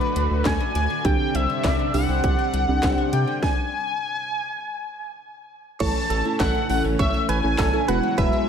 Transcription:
Already playing: qanun D3 F#3 A3 D4, string machine D3 A3 F#4, synth keys A3 D4 A4, analog synth lead B4
0.01 qanun D5
0.16 analog synth bass D2, qanun D3, closed hi-hat
0.31 analog synth bass D2
0.45 analog synth bass D2, qanun A3, analog synth lead G#5, kick, snare, clap, closed hi-hat
0.60 qanun D4
0.75 analog synth bass D2, qanun D5, analog synth lead G#5, closed hi-hat
0.90 qanun D3
1.05 analog synth bass C2, string machine C3 G3 D4, qanun D3, synth keys C4 D4 G4, analog synth lead G5, kick, closed hi-hat
1.35 analog synth bass C2, qanun C4, analog synth lead E5, closed hi-hat
1.49 qanun D4
1.64 analog synth bass C2, qanun D5, kick, snare, clap, closed hi-hat
1.79 qanun D3
1.94 analog synth bass C2, qanun G3, synth keys C4 D4 G4, analog synth lead F#5, open hi-hat
2.09 analog synth bass C2, qanun C4
2.24 analog synth bass C2, qanun D4, kick, closed hi-hat
2.39 qanun D5
2.53 analog synth bass C2, qanun D3, closed hi-hat
2.68 analog synth bass C2, synth keys C4 D4 G4
2.83 analog synth bass C2, qanun C4, kick, snare, clap, closed hi-hat
2.98 qanun D4
3.13 analog synth bass C3, qanun D5, analog synth lead G5, closed hi-hat
3.27 qanun D3
3.42 analog synth lead G#5, kick, snare
5.80 analog synth bass A1, string machine E3 A3 C#4, qanun E3, synth keys A3 C#4 E4 A4, clean electric guitar C#5, analog synth lead A5, kick, closed hi-hat, crash
5.95 qanun A3
6.10 analog synth bass A1, qanun C#4, clean electric guitar A4, closed hi-hat
6.25 synth keys A3 C#4 E4 A4, qanun E4
6.40 analog synth bass A1, qanun E5, analog synth lead F#5, kick, snare, clap, closed hi-hat
6.55 qanun E3
6.69 analog synth bass A1, synth keys A3 C#4 E4 A4, qanun A3, analog synth lead F#5, open hi-hat
6.84 analog synth bass A1, qanun C#4
6.99 analog synth bass A1, clean electric guitar C#5, analog synth lead E5, kick, closed hi-hat
7.14 qanun E5
7.29 analog synth bass A1, qanun E3, clean electric guitar B4, analog synth lead G#5, closed hi-hat
7.44 analog synth bass A1, synth keys A3 C#4 E4 A4
7.58 analog synth bass A1, qanun C#4, clean electric guitar A4, kick, snare, clap, closed hi-hat
7.73 synth keys A3 C#4 E4 A4, qanun E4
7.88 analog synth bass E1, string machine F#3 G#3 E4, synth keys G#3 B3 E4 F#4, qanun F#4, clean electric guitar B4, analog synth lead F#5, closed hi-hat
8.03 qanun F#3
8.18 analog synth bass E1, qanun F#3, clean electric guitar B4, analog synth lead E5, kick, closed hi-hat
8.33 qanun G#3

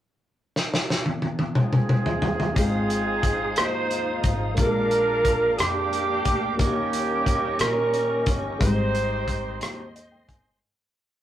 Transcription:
0.56 snare
0.74 snare
0.90 snare
1.06 high tom
1.22 high tom
1.39 high tom
1.55 alto saxophone G#4, mid tom
1.60 horn section C4 F4 G#4
1.73 mid tom
1.89 mid tom
2.06 floor tom
2.22 floor tom
2.40 floor tom
2.54 upright bass G#1, upright piano G#2 C4 D#4 F4, string section F3 G#3 C4 D#4, alto saxophone G#4, tonewheel organ C5 F5 D#6, kick, closed hi-hat
2.59 horn section C4 F4 G#4, upright piano G#4
2.90 closed hi-hat
3.23 kick, closed hi-hat
3.56 upright bass D#2, horn section D#4, alto saxophone C5, cross-stick, closed hi-hat
3.60 horn section F4 C5
3.91 closed hi-hat
4.24 upright bass G#1, kick, closed hi-hat
4.54 upright bass A#1, upright piano A#2 A#3 D4 F4, tonewheel organ A#4 D6, kick, closed hi-hat
4.59 string section G#3 A#3 D4, horn section D4 F4 A#4, upright piano G4, alto saxophone A#4
4.65 upright piano G#3
4.91 closed hi-hat
5.25 kick, closed hi-hat
5.58 upright bass F2, horn section D4 G4, alto saxophone G4, cross-stick, closed hi-hat
5.93 closed hi-hat
6.25 upright bass D2, kick, closed hi-hat
6.56 upright bass D#2, upright piano D#3 A#3 C#4 D#4, string section G3, alto saxophone G4, kick, closed hi-hat
6.60 string section D#3 C#4, horn section A#3 C#4 G4, upright piano F4, tonewheel organ D#5 C#6
6.66 upright piano G4
6.93 closed hi-hat
7.26 kick, closed hi-hat
7.59 upright bass A#2, alto saxophone A#4, cross-stick, closed hi-hat
7.64 horn section C#4 G4 A#4
7.94 closed hi-hat
8.26 upright bass G1, kick, closed hi-hat
8.58 upright bass G#1, upright piano G#2 G#3 C4 D#4, string section D#3 C4, horn section D#4 G4 C5, tonewheel organ C5 C6, alto saxophone C5, kick, closed hi-hat
8.63 upright piano G3
8.95 closed hi-hat
9.28 kick, closed hi-hat
9.61 upright bass D#2, cross-stick, closed hi-hat
9.95 upright piano D#5, closed hi-hat
10.12 upright piano G5
10.28 upright bass G1, upright piano G#5, kick, closed hi-hat

